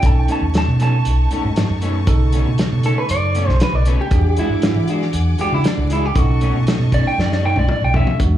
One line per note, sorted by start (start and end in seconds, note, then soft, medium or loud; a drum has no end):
0.02 0.25 B1 loud
0.02 2.03 C#4 medium
0.02 2.03 D#4 medium
0.02 4.07 D#4 medium
0.02 2.04 A4 medium
0.02 4.07 A5 medium
0.02 4.07 C#6 medium
0.02 kick loud
0.02 closed hi-hat medium
0.06 0.19 A5 loud
0.19 0.30 G5 medium
0.28 0.44 B2 medium
0.28 0.44 A3 medium
0.28 0.44 C#4 medium
0.28 0.45 D#4 medium
0.28 closed hi-hat medium
0.32 0.43 A5 medium
0.41 0.64 D#2 medium
0.54 0.81 A5 loud
0.54 snare loud
0.54 closed hi-hat medium
0.68 1.01 B2 medium
0.80 0.95 B2 medium
0.80 0.95 A3 medium
0.80 0.96 C#4 medium
0.80 0.96 D#4 medium
0.80 2.30 A5 loud
0.80 snare soft
0.80 closed hi-hat medium
1.05 1.28 B1 medium
1.05 closed hi-hat medium
1.31 1.46 B2 medium
1.31 1.47 A3 medium
1.31 1.47 C#4 medium
1.31 1.47 D#4 medium
1.31 closed hi-hat medium
1.44 1.55 G#2 medium
1.56 snare loud
1.56 closed hi-hat medium
1.70 2.03 F#2 medium
1.82 1.97 B2 medium
1.82 1.98 A3 loud
1.82 1.98 C#4 medium
1.82 1.98 D#4 loud
1.82 closed hi-hat medium
2.06 2.41 B1 medium
2.06 4.07 C#3 medium
2.06 4.07 D#4 medium
2.06 4.08 A4 loud
2.06 kick loud
2.06 closed hi-hat medium
2.33 2.48 B2 medium
2.33 2.49 A3 medium
2.33 2.49 C#4 medium
2.33 2.49 D#4 medium
2.33 closed hi-hat medium
2.46 2.57 B2 medium
2.58 snare loud
2.58 closed hi-hat medium
2.72 2.94 B2 medium
2.83 2.99 B2 medium
2.83 3.00 A3 medium
2.83 3.00 C#4 medium
2.83 3.01 D#4 medium
2.83 2.98 A4 medium
2.83 closed hi-hat medium
2.98 3.10 B4 medium
3.09 3.43 F#2 medium
3.09 3.48 D5 loud
3.09 closed hi-hat medium
3.35 3.50 B2 medium
3.35 3.51 A3 medium
3.35 3.51 C#4 medium
3.35 3.51 D#4 loud
3.35 closed hi-hat medium
3.48 3.59 B1 medium
3.48 3.60 C5 loud
3.48 snare soft
3.60 3.75 B4 medium
3.60 snare loud
3.60 closed hi-hat medium
3.73 3.96 B1 medium
3.73 3.88 D5 medium
3.85 4.01 B2 loud
3.85 4.02 A3 medium
3.85 4.02 C#4 loud
3.85 4.03 D#4 medium
3.85 4.00 B4 medium
3.85 closed hi-hat medium
4.01 4.37 G4 medium
4.11 4.34 E2 loud
4.11 6.11 D4 medium
4.11 6.12 F#4 medium
4.11 6.12 G#4 medium
4.11 6.13 F#5 medium
4.11 6.13 G#5 medium
4.11 6.13 D6 medium
4.11 kick loud
4.11 closed hi-hat medium
4.37 4.52 E3 medium
4.37 4.53 G#3 medium
4.37 4.53 D4 medium
4.37 4.88 E4 loud
4.37 4.54 F#4 medium
4.37 closed hi-hat medium
4.50 4.72 G#2 loud
4.62 snare loud
4.62 closed hi-hat medium
4.75 5.09 E3 medium
4.87 5.03 E3 medium
4.87 5.04 G#3 medium
4.87 5.04 D4 medium
4.87 5.05 F#4 medium
4.87 closed hi-hat medium
5.02 snare soft
5.13 5.36 E2 loud
5.13 closed hi-hat medium
5.38 5.54 E3 medium
5.38 5.55 G#3 medium
5.38 5.55 D4 medium
5.38 5.55 F#4 loud
5.38 5.53 G4 loud
5.38 muted fingered electric bass stroke soft
5.38 closed hi-hat medium
5.52 5.63 C#3 medium
5.52 5.66 E4 medium
5.64 5.91 D4 loud
5.64 snare loud
5.64 closed hi-hat medium
5.77 6.11 C#2 medium
5.90 6.05 E3 medium
5.90 6.06 G#3 medium
5.90 6.06 D4 medium
5.90 6.06 E4 medium
5.90 6.07 F#4 medium
5.90 closed hi-hat medium
6.06 6.18 G4 medium
6.15 6.50 B1 loud
6.15 8.15 C#4 medium
6.15 8.16 D#4 medium
6.15 6.66 F#4 loud
6.15 8.16 A4 medium
6.15 8.18 D#5 medium
6.15 8.18 A5 medium
6.15 8.18 C#6 medium
6.15 kick loud
6.15 closed hi-hat medium
6.41 6.56 B2 medium
6.41 6.57 A3 medium
6.41 6.57 C#4 medium
6.41 6.58 D#4 medium
6.41 closed hi-hat medium
6.54 6.65 B2 loud
6.67 snare loud
6.67 closed hi-hat medium
6.79 7.02 B2 medium
6.92 7.07 B2 medium
6.92 7.08 A3 medium
6.92 7.08 C#4 medium
6.92 7.08 D#4 medium
6.92 7.06 D5 loud
6.92 kick medium
6.92 closed hi-hat medium
7.07 7.18 G5 medium
7.18 7.52 F#2 loud
7.18 7.31 D5 medium
7.18 snare medium
7.32 7.44 D5 medium
7.32 snare medium
7.42 7.58 B2 medium
7.42 7.59 A3 medium
7.42 7.59 C#4 medium
7.42 7.60 D#4 loud
7.42 7.57 G5 medium
7.56 7.67 B1 loud
7.56 7.70 D5 medium
7.56 high tom medium
7.69 7.82 D5 loud
7.69 mid tom medium
7.82 8.04 B1 medium
7.82 7.95 G5 medium
7.94 8.09 B2 medium
7.94 8.10 A3 medium
7.94 8.10 C#4 loud
7.94 8.10 D#4 loud
7.94 8.20 E5 medium
7.94 floor tom loud
8.07 floor tom medium
8.19 8.38 E2 loud
8.19 8.38 G#3 medium
8.19 8.38 D4 medium
8.19 8.38 F#4 medium
8.19 kick loud
8.19 closed hi-hat medium